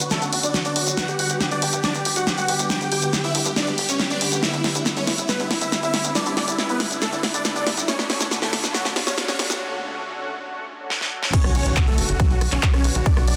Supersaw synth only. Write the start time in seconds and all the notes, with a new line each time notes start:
0.00 F#4
0.11 A3 A4
0.22 F#4
0.33 F#4
0.43 D4 D5
0.54 F#4
0.65 D4 D5
0.76 F#4
0.87 F#4
0.97 F#4 F#5
1.08 G4
1.19 F#4 F#5
1.30 G4
1.41 G4
1.51 D4 D5
1.62 G4
1.73 G4
1.84 D4 D5
1.95 G4
2.05 G4
2.16 F#4 F#5
2.27 G4
2.38 F#4 F#5
2.49 G4
2.59 G4
2.70 G4 G5
2.81 G4
2.92 G4 G5
3.02 G4
3.13 G4
3.24 E4 E5
3.35 G4
3.45 G4
3.56 D4 D5
3.67 G4
3.78 G4
3.89 C#4 C#5
4.00 G4
4.10 D4 D5
4.21 G4
4.32 G4
4.43 E4 E5
4.54 E4
4.64 E4 E5
4.75 E4
4.86 E4
4.97 C#4 C#5
5.07 E4
5.18 E4
5.29 B3 B4
5.40 E4
5.51 E4
5.61 E4 E5
5.72 E4
5.83 E4 E5
5.94 E4
6.05 E4
6.15 D4 D5
6.26 E4
6.37 D4 D5
6.48 E4
6.59 E4
6.69 B3 B4
6.80 E4
6.91 E4
7.02 A3 A4
7.12 E4
7.23 E4
7.34 D4 D5
7.45 E4
7.56 D4 D5
7.67 E4
7.77 E4
7.88 C#4 C#5
7.99 D4
8.10 C#4 C#5
8.21 D4
8.31 D4
8.42 A3 A4
8.53 D4
8.64 D4
8.74 F#3 F#4
8.85 D4
8.96 D4
9.07 C#4 C#5
9.18 D4
9.29 C#4 C#5
9.39 D4
9.50 D4
11.34 C#4 C#5
11.44 F#4
11.55 C#4 C#5
11.66 F#4
11.77 F#4
11.88 A3 A4
11.98 F#4
12.09 F#4
12.20 F#3 F#4
12.31 F#4
12.41 F#4
12.52 C#4 C#5
12.63 F#4
12.74 C#4 C#5
12.85 F#4
12.95 F#4
13.06 D4 D5
13.17 F#4
13.28 D4 D5